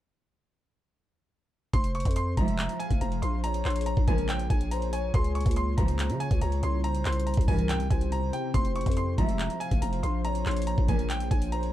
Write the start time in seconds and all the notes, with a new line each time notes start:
1.73 F1 F3 F4 G#4 C5 C6, kick, closed hi-hat
1.84 closed hi-hat
1.95 C#6, closed hi-hat
2.00 closed hi-hat
2.05 F2, kick, closed hi-hat
2.11 closed hi-hat
2.16 C6, closed hi-hat
2.37 F1 C2 G#2 F3 E5 A#5, kick, closed hi-hat
2.48 closed hi-hat
2.59 clap, closed hi-hat
2.69 closed hi-hat
2.80 F5 G#5, closed hi-hat
2.91 F1, kick, closed hi-hat
3.01 F1 A#5, closed hi-hat
3.12 closed hi-hat
3.22 A#1 C6, closed hi-hat
3.44 A#3 C#5 A#5, closed hi-hat
3.54 closed hi-hat
3.65 A#1 C6, clap, closed hi-hat
3.70 closed hi-hat
3.76 closed hi-hat
3.81 closed hi-hat
3.86 A#5, closed hi-hat
3.97 A#1, kick
4.08 A#1 C#2 A#2 F3 A#4 G#5, kick, closed hi-hat
4.18 closed hi-hat
4.29 G5, clap, closed hi-hat
4.39 closed hi-hat
4.50 A#1 G#5, kick, closed hi-hat
4.61 closed hi-hat
4.71 C5 A#5, closed hi-hat
4.82 closed hi-hat
4.93 C#5 G#5, closed hi-hat
5.14 C#2 C#3 C#4 F4 G#4 C6, kick, closed hi-hat
5.24 closed hi-hat
5.35 C#6, closed hi-hat
5.41 closed hi-hat
5.46 C#2, kick, closed hi-hat
5.51 closed hi-hat
5.56 C6, closed hi-hat
5.77 C#2 G#2 F3 C5 A#5, kick, closed hi-hat
5.88 closed hi-hat
5.99 clap, closed hi-hat
6.10 C#3, closed hi-hat
6.20 C#5 G#5, closed hi-hat
6.31 C#2, kick, closed hi-hat
6.41 C#2 A#5, closed hi-hat
6.52 closed hi-hat
6.63 C2 C6, closed hi-hat
6.84 C3 C4 E4 G4 C5 A#5, closed hi-hat
6.95 closed hi-hat
7.05 C2 C6, clap, closed hi-hat
7.12 closed hi-hat
7.20 closed hi-hat
7.27 A#5, closed hi-hat
7.34 C2, kick, closed hi-hat
7.41 closed hi-hat
7.48 C2 G2 E3 A#4 G#5, kick, open hi-hat
7.59 closed hi-hat
7.69 G5, clap, closed hi-hat
7.80 closed hi-hat
7.90 C2 C5 G#5, kick, closed hi-hat
8.01 closed hi-hat
8.12 A#5, closed hi-hat
8.33 G5, closed hi-hat
8.54 F1 F3 F4 G#4 C5 C6, kick, closed hi-hat
8.65 closed hi-hat
8.76 C#6, closed hi-hat
8.81 closed hi-hat
8.86 F2, kick, closed hi-hat
8.92 closed hi-hat
8.97 C6, closed hi-hat
9.18 F1 C2 G#2 F3 E5 A#5, kick, closed hi-hat
9.29 closed hi-hat
9.39 clap, closed hi-hat
9.50 closed hi-hat
9.60 F5 G#5, closed hi-hat
9.71 F1, kick, closed hi-hat
9.82 F1 A#5, closed hi-hat
9.93 closed hi-hat
10.03 A#1 C6, closed hi-hat
10.25 A#3 G#4 C#5 A#5, closed hi-hat
10.35 closed hi-hat
10.46 A#1 C6, clap, closed hi-hat
10.51 closed hi-hat
10.57 closed hi-hat
10.62 closed hi-hat
10.67 A#5, closed hi-hat
10.78 A#1, kick
10.88 A#1 C#2 A#2 F3 A#4 G#5, kick, closed hi-hat
10.99 closed hi-hat
11.10 G5, clap, closed hi-hat
11.20 closed hi-hat
11.31 A#1 G#5, kick, closed hi-hat
11.42 closed hi-hat
11.52 C5 A#5, closed hi-hat
11.63 closed hi-hat